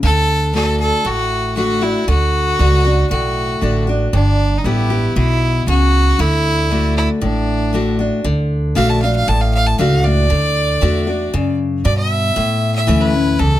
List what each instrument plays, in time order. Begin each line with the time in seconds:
0.03 upright bass D2, steel-string acoustic guitar D3, fiddle A4
0.54 steel-string acoustic guitar D3 A3 D4 F#4, fiddle A4
0.80 fiddle A4
1.05 upright bass A1, steel-string acoustic guitar A2, fiddle F#4
1.56 steel-string acoustic guitar D3 A3 D4 F#4, fiddle F#4
1.81 steel-string acoustic guitar D4 F#4, fiddle E4
2.08 upright bass D2, steel-string acoustic guitar D3, fiddle F#4
2.59 upright bass C#2, steel-string acoustic guitar D3 A3 D4 F#4
2.85 steel-string acoustic guitar D4 F#4
3.10 upright bass B1, steel-string acoustic guitar A2, fiddle F#4
3.61 upright bass A1, steel-string acoustic guitar D3 A3 D4 F#4
3.87 steel-string acoustic guitar D4 F#4
4.13 upright bass G1, steel-string acoustic guitar G2, fiddle D4
4.58 fiddle D#4
4.64 upright bass A1, steel-string acoustic guitar D3 G3 B3 G4, fiddle E4
4.90 steel-string acoustic guitar B3 G4
5.16 upright bass B1, steel-string acoustic guitar B2, fiddle E4
5.67 upright bass C#2, steel-string acoustic guitar C#3, fiddle F#4
6.19 upright bass D2, steel-string acoustic guitar D3, fiddle E4
6.70 steel-string acoustic guitar D3 A3 D4 F#4
6.97 fiddle E4
7.22 upright bass A1, steel-string acoustic guitar A2, fiddle D4
7.73 steel-string acoustic guitar D3 A3 D4 F#4
7.99 steel-string acoustic guitar D4 F#4
8.24 upright bass D2, steel-string acoustic guitar D3
8.75 upright bass A#1, steel-string acoustic guitar D3 A3 D4 F#4, fiddle F5
8.89 fiddle A5
9.01 steel-string acoustic guitar D4 F#4, fiddle F5
9.16 fiddle F5
9.27 upright bass A1, steel-string acoustic guitar A2, fiddle A5
9.41 fiddle F5
9.54 fiddle F5
9.66 fiddle A5
9.78 upright bass C#2, steel-string acoustic guitar D3 A3 D4 F#4, fiddle F5
10.04 steel-string acoustic guitar D4 F#4, fiddle D5
10.30 upright bass D2, steel-string acoustic guitar D3
10.81 upright bass E2, steel-string acoustic guitar D3 A3 D4 F#4
11.07 steel-string acoustic guitar D4 F#4
11.34 upright bass F#2, steel-string acoustic guitar C#3
11.85 upright bass G2, steel-string acoustic guitar B2, fiddle D5
11.97 fiddle E5
12.36 steel-string acoustic guitar A2, upright bass A2
12.75 fiddle E5
12.87 upright bass D2, steel-string acoustic guitar E3 A3 C#4 E4
13.01 fiddle B4
13.13 steel-string acoustic guitar C#4 E4
13.39 upright bass C#2, steel-string acoustic guitar E2, fiddle A4